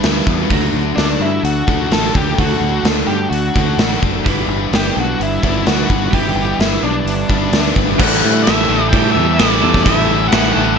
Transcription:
Already playing: clean electric guitar G3 B3 D4 E4 B4
0.02 fingered electric bass D2, clean electric guitar E3, overdriven electric guitar G3 B3 D4 B4, snare, open hi-hat
0.27 fingered electric bass E2, clean electric guitar B3, kick
0.49 fingered electric bass D2, overdriven electric guitar D3 D4 F#4 A4, clean electric guitar D3 F#3 A3 D4 F#4, kick, open hi-hat
0.54 clean electric guitar A4
0.74 fingered electric bass D2
0.96 fingered electric bass D2, clean electric guitar A3, lead electric guitar D4, snare, open hi-hat
1.20 fingered electric bass G2, clean electric guitar D4, lead electric guitar E4
1.43 fingered electric bass D2, clean electric guitar A3, lead electric guitar F#4, open hi-hat
1.67 fingered electric bass D2, overdriven electric guitar D3 D4 F#4 A4, clean electric guitar D4, kick
1.90 fingered electric bass A1, overdriven electric guitar D3 D4 F#4 A4, clean electric guitar F#3, lead electric guitar A4, snare, open hi-hat
2.15 fingered electric bass D2, clean electric guitar A3, lead electric guitar G4, kick
2.36 fingered electric bass D2, overdriven electric guitar D3 D4 F#4 A4, clean electric guitar D3 F#3 A3 D4, lead electric guitar F#4, kick, open hi-hat
2.41 clean electric guitar F#4 A4
2.60 fingered electric bass D2
2.83 fingered electric bass D2, clean electric guitar A3, snare, open hi-hat
3.07 fingered electric bass G2, clean electric guitar D4, lead electric guitar G4
3.30 fingered electric bass D2, clean electric guitar A3, lead electric guitar F#4, open hi-hat
3.54 fingered electric bass D2, overdriven electric guitar D3 D4 F#4 A4, clean electric guitar D4, kick
3.78 fingered electric bass A1, overdriven electric guitar D3 D4 F#4 A4, clean electric guitar F#3, snare, open hi-hat
4.02 fingered electric bass F#1, clean electric guitar A3, kick
4.24 fingered electric bass G1, clean electric guitar E3 G3 D4 E4 B4, overdriven electric guitar G3 B3 D4 B4, kick, open hi-hat
4.48 fingered electric bass G1
4.71 fingered electric bass G1, clean electric guitar B3, lead electric guitar G4, snare, open hi-hat
4.95 fingered electric bass B1, clean electric guitar D4
5.00 lead electric guitar F#4
5.19 fingered electric bass G1, clean electric guitar B3, lead electric guitar E4, open hi-hat
5.42 fingered electric bass G1, overdriven electric guitar G3 B3 D4 B4, clean electric guitar D4, lead electric guitar E4, kick
5.65 fingered electric bass D2, clean electric guitar E3, overdriven electric guitar G3 B3 D4 B4, lead electric guitar F#4, snare, open hi-hat
5.90 fingered electric bass G1, clean electric guitar B3, kick
6.11 fingered electric bass G1, clean electric guitar E3 G3 D4 E4, overdriven electric guitar G3 B3 D4 B4, lead electric guitar G4, kick, open hi-hat
6.15 clean electric guitar B4
6.35 fingered electric bass G1
6.59 fingered electric bass G1, clean electric guitar B3, lead electric guitar E4, snare, open hi-hat
6.83 fingered electric bass B1, lead electric guitar D4, clean electric guitar D4
7.05 fingered electric bass G1, clean electric guitar B3, open hi-hat
7.29 fingered electric bass G1, overdriven electric guitar G3 B3 D4 B4, clean electric guitar D4, kick
7.52 fingered electric bass D2, clean electric guitar E3, overdriven electric guitar G3 B3 D4 B4, snare, open hi-hat
7.76 fingered electric bass G1, clean electric guitar B3, kick
7.98 fingered electric bass A1, overdriven electric guitar A2 E3 G3 A3 C#4 G4, clean electric guitar A2 D3 E3 G3 E4 A4, lead electric guitar F#5, kick, crash
8.24 fingered electric bass A2, clean electric guitar A3
8.43 fingered electric bass A1, clean electric guitar A2 D3 E3 G3, overdriven electric guitar E3 G3 C#4, lead electric guitar E5, snare, crash
8.48 clean electric guitar E4 A4, overdriven electric guitar G4
8.68 fingered electric bass A1, overdriven electric guitar G3 C#4 G4, clean electric guitar G3 A3 E4 A4
8.89 overdriven electric guitar A2 E3 G3 C#4, clean electric guitar G3, lead electric guitar G5, kick, crash
8.93 fingered electric bass A2, clean electric guitar E4 G4 A4, overdriven electric guitar G4
9.12 overdriven electric guitar A3 G4, lead electric guitar E5
9.16 fingered electric bass E2, overdriven electric guitar A2 E3 G3 C#4
9.34 lead electric guitar D#5
9.38 fingered electric bass A1, overdriven electric guitar A2 E3 G3 A3 C#4 G4, clean electric guitar G3 E4 G4 A4, snare, crash
9.51 lead electric guitar D5
9.62 fingered electric bass E2, clean electric guitar G3 A3 E4 A4
9.74 kick, snare
9.83 fingered electric bass A1, overdriven electric guitar A2 E3 G3 C#4, clean electric guitar A2 D3 E3 G3, lead electric guitar E5, kick, crash
9.87 overdriven electric guitar A3 G4, clean electric guitar E4 A4
10.08 clean electric guitar A3
10.28 clean electric guitar A2 D3 E3, overdriven electric guitar E3 G3, lead electric guitar F#5, crash
10.32 fingered electric bass A1, clean electric guitar G3 E4 A4, overdriven electric guitar C#4 G4, snare
10.53 fingered electric bass A1, clean electric guitar A3 E4 A4, overdriven electric guitar G4, lead electric guitar F#5
10.57 clean electric guitar G3, overdriven electric guitar G3 C#4

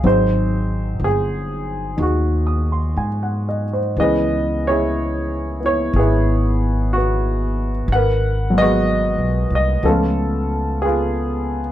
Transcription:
0.04 upright bass G#1, grand piano F#3 C4 D#4 G#4 C5
1.00 upright bass G1
1.04 grand piano G#4
1.97 upright bass D#2, grand piano D#4 F#4 G#4
2.02 grand piano F#4
2.47 grand piano D#6
2.72 grand piano C6
2.97 upright bass G#2, grand piano G#5
3.23 grand piano F#5
3.49 grand piano D#5
3.73 grand piano C5
3.97 upright bass C#2, grand piano E3 B3 C#4 G#4 D#5
4.02 grand piano B4
4.67 grand piano E4 G#4 C#5
5.60 grand piano B3 E4
5.66 grand piano C#5
5.93 upright bass G#1, grand piano G#4
5.99 grand piano B3 E4
6.93 grand piano F#4
6.97 grand piano B3
7.88 upright bass G#1
7.92 grand piano A#4 B4 F#5
8.50 grand piano F#3 G#3
8.58 grand piano B3 G#4 B4 D#5
8.62 grand piano F#4
9.18 upright bass B1
9.50 upright bass C2
9.55 grand piano D#5
9.83 upright bass C#2, grand piano F3 A3 B3 C#4 A4
9.89 grand piano F4
10.82 grand piano B3 F4 G#4

